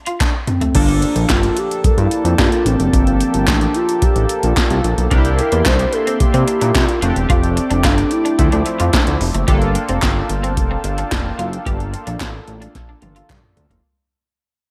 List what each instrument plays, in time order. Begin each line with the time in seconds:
0.06 clean electric guitar F4, closed hi-hat
0.20 clean electric guitar D4, kick, snare, clap, closed hi-hat
0.47 soft synth lead C4, muted clean electric guitar stroke, closed hi-hat, mid tom
0.61 clean electric guitar A3, closed hi-hat, floor tom
0.74 analog synth bass G1, analog polysynth F3 A#3 D4 A4, analog synth pad A#3 G4 G5 A5, soft synth lead D4, kick, closed hi-hat, crash
0.88 closed hi-hat
1.02 closed hi-hat
1.16 analog synth bass A#1, closed hi-hat
1.29 analog synth bass G1, soft synth lead F4, kick, snare, clap, closed hi-hat
1.43 closed hi-hat
1.57 soft synth lead G4, closed hi-hat
1.71 closed hi-hat
1.84 analog synth bass G2, soft synth lead A4, kick, closed hi-hat
1.98 analog synth bass G2, soft synth lead E4, closed hi-hat
2.11 closed hi-hat
2.25 analog synth bass F2, closed hi-hat
2.39 analog synth bass G2, soft synth lead F4, kick, snare, clap, closed hi-hat
2.52 closed hi-hat
2.66 analog synth bass A1, soft synth lead C4, closed hi-hat
2.79 analog synth bass F#1, closed hi-hat
2.93 analog synth bass G1, kick, closed hi-hat
3.07 closed hi-hat
3.21 closed hi-hat
3.34 analog synth bass G1, closed hi-hat
3.47 analog synth bass A1, soft synth lead D4, kick, snare, clap, closed hi-hat
3.61 closed hi-hat
3.75 soft synth lead F4, closed hi-hat
3.89 closed hi-hat
4.02 soft synth lead G4, kick, closed hi-hat
4.16 analog synth bass A1, closed hi-hat
4.29 closed hi-hat
4.43 analog synth bass A#1, soft synth lead F4, closed hi-hat
4.57 kick, snare, clap, closed hi-hat
4.70 analog synth bass C2, closed hi-hat
4.84 analog synth bass A#1, closed hi-hat
4.98 analog synth bass B1, closed hi-hat
5.10 analog synth bass C2, analog polysynth A#3 D4 D#4 G4, clean electric guitar C4, analog synth pad D5 E5 C6, kick, closed hi-hat
5.18 analog polysynth E4
5.25 closed hi-hat
5.39 soft synth lead A#4, muted clean electric guitar stroke, closed hi-hat
5.52 analog synth bass E2, clean electric guitar A#3, closed hi-hat
5.65 analog synth bass C2, clean electric guitar D4, soft synth lead C5, kick, snare, clap, closed hi-hat
5.79 muted clean electric guitar stroke, closed hi-hat
5.93 soft synth lead A4, closed hi-hat
6.07 clean electric guitar C4, closed hi-hat
6.20 analog synth bass C3, soft synth lead G4, kick, closed hi-hat
6.34 analog synth bass C3, clean electric guitar C4, closed hi-hat
6.48 muted clean electric guitar stroke, closed hi-hat
6.61 analog synth bass A#2, clean electric guitar D4, closed hi-hat
6.75 analog synth bass C3, soft synth lead F4, kick, snare, clap, closed hi-hat
6.89 closed hi-hat
7.02 analog synth bass F1, analog polysynth A3 C4 D4 F#4, soft synth lead C4, clean electric guitar F4, analog synth pad A4 D5 G5 D6, closed hi-hat
7.10 analog polysynth G4
7.16 analog synth bass E1, closed hi-hat
7.30 analog synth bass F1, clean electric guitar F4, kick, closed hi-hat
7.44 closed hi-hat
7.57 muted clean electric guitar stroke, closed hi-hat
7.70 analog synth bass F1, clean electric guitar D4, closed hi-hat
7.84 analog synth bass G1, soft synth lead D4, clean electric guitar F4, kick, snare, clap, closed hi-hat
7.98 muted clean electric guitar stroke, closed hi-hat
8.11 soft synth lead E4, closed hi-hat
8.25 clean electric guitar D4, closed hi-hat
8.38 analog synth bass D2, analog polysynth F3 A3 C4 E4, analog synth pad C5 E5, kick, closed hi-hat
8.52 analog synth bass D2, clean electric guitar D4, closed hi-hat
8.66 muted clean electric guitar stroke, closed hi-hat
8.80 analog synth bass F2, clean electric guitar F4, closed hi-hat
8.93 clean electric guitar D4, kick, snare, clap, closed hi-hat
9.07 analog synth bass D2, closed hi-hat
9.21 analog synth bass F1, muted clean electric guitar stroke, open hi-hat
9.34 analog synth bass F#1, clean electric guitar A3, closed hi-hat
9.47 analog synth bass G1, analog polysynth A3 D4 F4 A4, clean electric guitar G4, analog synth pad F5 G5 A5, kick, closed hi-hat
9.54 analog polysynth A#3
9.62 closed hi-hat
9.75 muted clean electric guitar stroke, closed hi-hat
9.89 analog synth bass F1, clean electric guitar C4, closed hi-hat
10.02 analog synth bass G1, clean electric guitar D4, kick, snare, clap, closed hi-hat
10.16 muted clean electric guitar stroke
10.30 analog synth bass G1, closed hi-hat
10.43 clean electric guitar C4, closed hi-hat
10.57 analog synth bass F1, kick, closed hi-hat
10.71 clean electric guitar C4
10.84 analog synth bass G1, muted clean electric guitar stroke, closed hi-hat
10.98 clean electric guitar D4, closed hi-hat
11.12 analog synth bass F1, kick, snare, clap, closed hi-hat
11.39 analog synth bass F#1, clean electric guitar F4, closed hi-hat
11.53 closed hi-hat
11.66 analog synth bass G1, clean electric guitar G4, kick, closed hi-hat
11.80 closed hi-hat
11.94 muted clean electric guitar stroke, closed hi-hat
12.07 analog synth bass A#1, clean electric guitar D4, closed hi-hat
12.20 analog synth bass A1, clean electric guitar F4, kick, snare, clap, closed hi-hat
12.34 muted clean electric guitar stroke
12.48 analog synth bass A1, closed hi-hat
12.62 clean electric guitar D4, closed hi-hat
12.75 analog synth bass A#1, kick, snare, closed hi-hat
12.89 clean electric guitar D4
13.02 analog synth bass G1, muted clean electric guitar stroke, closed hi-hat, high tom
13.16 clean electric guitar F4, closed hi-hat
13.30 analog synth bass G2, clean electric guitar D4, kick, clap, closed hi-hat, mid tom
13.43 mid tom
13.57 analog synth bass D2, muted clean electric guitar stroke, closed hi-hat, floor tom
13.70 analog synth bass F#1, clean electric guitar A#3, closed hi-hat, floor tom